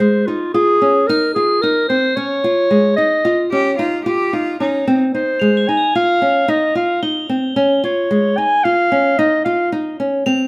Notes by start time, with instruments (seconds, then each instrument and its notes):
Already playing: clarinet C5
0.00 nylon-string guitar G#3
0.27 nylon-string guitar D#4, clarinet F4
0.54 nylon-string guitar F4, clarinet G#4
0.82 nylon-string guitar C#4
1.07 nylon-string guitar D#4, clarinet A#4, crotales C8
1.34 nylon-string guitar F4, clarinet G#4
1.61 nylon-string guitar D#4, clarinet A#4, crotales A#7
1.89 nylon-string guitar C4, clarinet C5
2.16 nylon-string guitar C#4, clarinet C#5
2.44 nylon-string guitar F4
2.71 nylon-string guitar G#3
2.97 nylon-string guitar D#4, clarinet D#5
3.25 nylon-string guitar F4
3.51 nylon-string guitar C#4, cello G4
3.77 nylon-string guitar D#4, cello F4
4.05 nylon-string guitar F4, cello G4
4.33 nylon-string guitar D#4, cello F4
4.60 nylon-string guitar C#4, cello D#4
4.87 nylon-string guitar C4
5.14 nylon-string guitar D#4, clarinet C5
5.40 nylon-string guitar G#3, crotales F7
5.57 crotales G#7
5.68 nylon-string guitar D#4, clarinet G#5
5.77 crotales A#7
5.95 nylon-string guitar F4, clarinet F5
6.22 nylon-string guitar C#4
6.48 nylon-string guitar D#4, clarinet D#5
6.75 nylon-string guitar F4, clarinet F5
7.03 nylon-string guitar D#4, crotales G7
7.29 nylon-string guitar C4
7.56 nylon-string guitar C#4
7.84 nylon-string guitar F4, clarinet C#5
8.11 nylon-string guitar G#3
8.38 nylon-string guitar D#4, clarinet G#5
8.64 nylon-string guitar F4, clarinet F5
8.92 nylon-string guitar C#4
9.18 nylon-string guitar D#4, clarinet D#5
9.45 nylon-string guitar F4, clarinet F5
9.72 nylon-string guitar D#4
10.00 nylon-string guitar C#4
10.26 nylon-string guitar C4, crotales F7